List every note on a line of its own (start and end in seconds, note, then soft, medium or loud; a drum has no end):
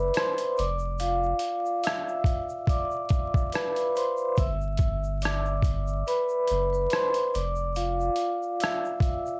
0.00 0.11 F#1 medium
0.00 0.11 B4 medium
0.00 0.58 D5 medium
0.00 0.11 B5 medium
0.00 0.58 D6 medium
0.14 0.55 C5 medium
0.14 0.55 C6 medium
0.14 cross-stick loud
0.14 closed hi-hat medium
0.14 shaker medium
0.38 closed hi-hat soft
0.38 shaker soft
0.57 1.33 F1 loud
0.57 0.77 D5 medium
0.57 0.77 D6 medium
0.57 closed hi-hat medium
0.57 shaker soft
0.79 shaker medium
0.99 1.81 F4 medium
0.99 1.87 F5 medium
0.99 closed hi-hat medium
0.99 shaker medium
1.23 shaker soft
1.39 closed hi-hat medium
1.39 shaker soft
1.66 shaker soft
1.83 2.65 E5 medium
1.83 2.65 E6 medium
1.83 cross-stick loud
1.83 closed hi-hat medium
1.83 shaker medium
2.08 shaker soft
2.24 kick medium
2.24 closed hi-hat medium
2.24 shaker medium
2.49 shaker medium
2.67 3.56 D5 medium
2.67 3.49 D6 medium
2.67 kick medium
2.67 closed hi-hat medium
2.67 shaker medium
2.91 shaker soft
3.09 kick loud
3.09 closed hi-hat medium
3.09 shaker medium
3.34 kick loud
3.34 shaker medium
3.52 3.97 B4 medium
3.52 3.93 B5 medium
3.52 cross-stick loud
3.52 closed hi-hat medium
3.52 shaker medium
3.76 closed hi-hat medium
3.76 shaker medium
3.96 4.39 C5 medium
3.96 4.35 C6 medium
3.96 closed hi-hat medium
3.96 shaker soft
4.17 shaker medium
4.37 6.03 G1 loud
4.37 5.25 E5 medium
4.37 5.19 E6 medium
4.37 kick loud
4.37 closed hi-hat medium
4.37 shaker medium
4.61 shaker soft
4.77 kick medium
4.77 closed hi-hat medium
4.77 shaker soft
5.04 shaker soft
5.21 6.09 D5 medium
5.21 6.03 D6 medium
5.21 closed hi-hat medium
5.21 shaker medium
5.25 cross-stick loud
5.46 shaker soft
5.62 kick medium
5.62 closed hi-hat medium
5.62 shaker medium
5.87 shaker medium
6.07 6.72 B4 medium
6.07 6.69 B5 medium
6.07 closed hi-hat medium
6.07 shaker medium
6.29 shaker soft
6.47 6.87 F#1 medium
6.47 closed hi-hat medium
6.47 shaker medium
6.73 6.92 B4 medium
6.73 6.90 B5 medium
6.73 shaker medium
6.90 7.35 C5 medium
6.90 7.31 C6 medium
6.90 cross-stick loud
6.90 closed hi-hat medium
6.90 shaker medium
7.14 closed hi-hat medium
7.14 shaker soft
7.34 8.09 F1 loud
7.34 7.77 D5 medium
7.34 7.73 D6 medium
7.34 closed hi-hat medium
7.34 shaker soft
7.56 shaker medium
7.76 8.57 F4 medium
7.76 8.56 F5 medium
7.76 closed hi-hat medium
7.76 shaker medium
8.00 shaker medium
8.16 closed hi-hat medium
8.16 shaker soft
8.43 shaker soft
8.60 9.40 E5 medium
8.60 9.40 E6 medium
8.60 cross-stick loud
8.60 closed hi-hat medium
8.60 shaker medium
8.85 shaker soft
9.00 kick medium
9.00 closed hi-hat medium
9.00 shaker soft
9.26 shaker medium